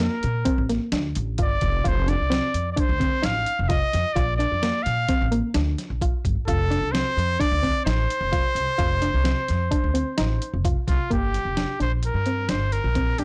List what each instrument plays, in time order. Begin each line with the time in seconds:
0.00 synth arpeggio sound A#3, trumpet A#4, snare, closed hi-hat
0.23 upright bass A#2, closed hi-hat
0.45 synth arpeggio sound C4, kick, closed hi-hat
0.58 upright bass A1
0.69 synth arpeggio sound A#3, snare, closed hi-hat
0.92 upright bass D2, synth arpeggio sound D4, snare, closed hi-hat
1.15 upright bass A1, closed hi-hat
1.38 upright bass G1, synth arpeggio sound F4, kick, closed hi-hat
1.42 trumpet D5
1.61 upright bass F1, kick, closed hi-hat
1.84 upright bass F1, synth arpeggio sound F4, trumpet C5, kick, closed hi-hat
2.07 synth arpeggio sound D4, trumpet D5, closed hi-hat
2.20 upright bass C2
2.30 synth arpeggio sound C4, snare, closed hi-hat
2.54 upright bass F2, closed hi-hat
2.72 synth arpeggio sound D4, trumpet D5
2.77 trumpet C5, kick, closed hi-hat
2.89 upright bass D2
3.00 synth arpeggio sound C4, kick, closed hi-hat
3.22 upright bass A1, synth arpeggio sound D#4, trumpet F5, snare, closed hi-hat
3.46 closed hi-hat
3.59 upright bass F1, trumpet F5
3.68 synth arpeggio sound F4, trumpet D#5, kick, snare, closed hi-hat
3.93 upright bass F2, snare, closed hi-hat
4.15 upright bass A#1, synth arpeggio sound F4, trumpet D5, kick, closed hi-hat
4.37 synth arpeggio sound D4, trumpet D5, closed hi-hat
4.52 upright bass F2
4.62 synth arpeggio sound A#3, snare, closed hi-hat
4.83 upright bass A#2, trumpet F5, snare, closed hi-hat
5.08 synth arpeggio sound C4, kick, snare, closed hi-hat
5.22 upright bass A1
5.31 synth arpeggio sound A#3, closed hi-hat
5.54 upright bass D2, synth arpeggio sound D4, snare, closed hi-hat
5.78 snare, closed hi-hat
5.90 upright bass A#1
6.01 synth arpeggio sound F4, kick, closed hi-hat
6.25 upright bass G1, kick, closed hi-hat
6.47 upright bass F1, synth arpeggio sound F4, trumpet A4, kick, closed hi-hat
6.71 synth arpeggio sound D4, snare, closed hi-hat
6.81 upright bass C2
6.92 synth arpeggio sound C4, trumpet C5, snare, closed hi-hat
7.17 upright bass F2, closed hi-hat
7.39 synth arpeggio sound D4, trumpet D5, kick, closed hi-hat
7.52 upright bass D2
7.63 synth arpeggio sound C4, kick, closed hi-hat
7.85 upright bass A1, synth arpeggio sound D#4, trumpet C5, snare, closed hi-hat
8.10 closed hi-hat
8.21 upright bass F1
8.32 synth arpeggio sound F4, kick, snare, closed hi-hat
8.55 upright bass C2, closed hi-hat
8.78 upright bass F1, synth arpeggio sound F4, kick, closed hi-hat
9.02 synth arpeggio sound D4, closed hi-hat
9.14 upright bass C2
9.24 synth arpeggio sound C4, snare, closed hi-hat
9.48 upright bass F2, snare, closed hi-hat
9.71 synth arpeggio sound D4, kick, closed hi-hat
9.84 upright bass D2
9.94 synth arpeggio sound C4, closed hi-hat
10.17 upright bass A1, synth arpeggio sound D#4, snare, closed hi-hat
10.42 closed hi-hat
10.54 upright bass F1
10.65 synth arpeggio sound F4, kick, closed hi-hat
10.88 upright bass C2, trumpet F4, kick, snare, closed hi-hat
11.10 upright bass G1, synth arpeggio sound A#3, trumpet G4, kick, closed hi-hat
11.34 snare, closed hi-hat
11.45 upright bass F1
11.57 synth arpeggio sound D4, snare, closed hi-hat
11.80 upright bass A#1, synth arpeggio sound D4, trumpet C5, closed hi-hat
12.03 trumpet A#4, closed hi-hat
12.14 upright bass G2
12.26 synth arpeggio sound C4, closed hi-hat
12.49 upright bass G1, synth arpeggio sound D4, trumpet C5, snare, closed hi-hat
12.72 trumpet A#4, closed hi-hat
12.84 upright bass A#1
12.95 synth arpeggio sound C4, kick, closed hi-hat
13.18 upright bass G1, synth arpeggio sound D4, trumpet G4, closed hi-hat